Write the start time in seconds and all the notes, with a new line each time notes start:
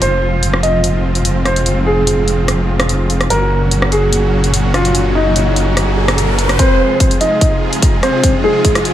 Already playing: F3 F4
0.02 F1 G#2 C4 C5, closed hi-hat
0.43 closed hi-hat
0.54 cross-stick
0.63 D#5, closed hi-hat
0.84 closed hi-hat
1.15 closed hi-hat
1.25 closed hi-hat
1.45 C5, cross-stick, closed hi-hat
1.56 closed hi-hat
1.66 closed hi-hat
1.87 G#4
2.07 closed hi-hat
2.28 closed hi-hat
2.48 cross-stick, closed hi-hat
2.80 cross-stick, closed hi-hat
2.89 closed hi-hat
3.10 closed hi-hat
3.21 cross-stick, closed hi-hat
3.30 F#1 A#2 C#3 F#3 C#4 F#4 A#4, closed hi-hat, riser
3.71 closed hi-hat
3.82 cross-stick
3.92 G#4, closed hi-hat
4.13 closed hi-hat
4.44 closed hi-hat
4.54 closed hi-hat
4.74 F4, cross-stick, closed hi-hat
4.85 closed hi-hat
4.95 closed hi-hat
5.15 D#4
5.36 closed hi-hat
5.56 closed hi-hat
5.77 cross-stick, closed hi-hat
6.08 cross-stick, closed hi-hat
6.18 closed hi-hat
6.39 closed hi-hat
6.49 cross-stick, closed hi-hat
6.59 C3 F3 G#3 C4 C5, kick, closed hi-hat, riser
7.00 kick, closed hi-hat
7.11 closed hi-hat
7.21 D#4 D#5, closed hi-hat
7.41 kick, closed hi-hat
7.73 closed hi-hat
7.82 kick, closed hi-hat
8.03 C4 C5, cross-stick, closed hi-hat
8.24 kick, closed hi-hat
8.44 G#3 G#4
8.65 kick, closed hi-hat
8.75 cross-stick, closed hi-hat
8.85 closed hi-hat